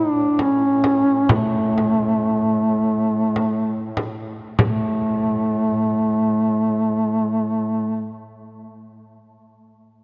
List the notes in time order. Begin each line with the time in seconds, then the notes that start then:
Already playing: A2 D4
0.39 C#4, frame drum
0.84 frame drum
1.29 A3, frame drum
1.78 frame drum
3.36 frame drum
3.97 frame drum
4.59 A2 A3, frame drum